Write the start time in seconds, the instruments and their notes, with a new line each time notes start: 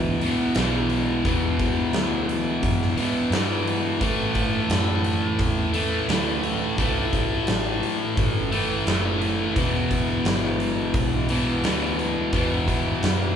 Already playing: picked electric bass D2, distorted electric guitar E2 B2 E3
0.21 distorted electric guitar E2 B2 E3, open hi-hat
0.55 picked electric bass B1, distorted electric guitar E2 B2 E3, snare, open hi-hat
0.90 open hi-hat
1.25 picked electric bass E2, distorted electric guitar E2 B2 E3, kick, open hi-hat
1.59 kick, open hi-hat
1.93 picked electric bass D2, snare, open hi-hat
2.29 open hi-hat
2.63 picked electric bass F#2, kick, open hi-hat
2.82 snare
2.96 distorted electric guitar E2 B2 E3, muted picked electric bass stroke, open hi-hat
3.30 distorted electric guitar E2 B2, picked electric bass G2, snare, open hi-hat
3.35 distorted electric guitar E3
3.67 open hi-hat
4.00 distorted electric guitar A2 E3 A3, picked electric bass A2, kick, open hi-hat
4.35 kick, open hi-hat
4.69 picked electric bass F#2, snare, open hi-hat
5.04 open hi-hat
5.39 picked electric bass E2, kick, open hi-hat
5.73 distorted electric guitar A2 E3 A3, open hi-hat
6.08 picked electric bass D2, distorted electric guitar A2 E3 A3, snare, open hi-hat
6.43 open hi-hat
6.77 picked electric bass C2, distorted electric guitar A2 E3 A3, kick, open hi-hat
7.13 kick, open hi-hat
7.47 picked electric bass A1, snare, open hi-hat
7.83 muted picked electric bass stroke, open hi-hat
8.17 picked electric bass G1, kick, open hi-hat
8.52 distorted electric guitar A2 E3 A3, open hi-hat
8.86 picked electric bass F#1, distorted electric guitar A2 E3 A3, snare, open hi-hat
9.22 open hi-hat
9.56 picked electric bass E1, distorted electric guitar E2 B2 E3, kick, open hi-hat
9.91 kick, open hi-hat
10.25 picked electric bass G1, snare, open hi-hat
10.60 open hi-hat
10.94 picked electric bass B1, kick, open hi-hat
11.29 distorted electric guitar E2 B2 E3, open hi-hat
11.64 picked electric bass D2, distorted electric guitar E2 B2 E3, snare, open hi-hat
11.99 open hi-hat
12.33 picked electric bass E2, distorted electric guitar E2 B2 E3, kick, open hi-hat
12.68 kick, open hi-hat
13.03 picked electric bass F#2, snare, open hi-hat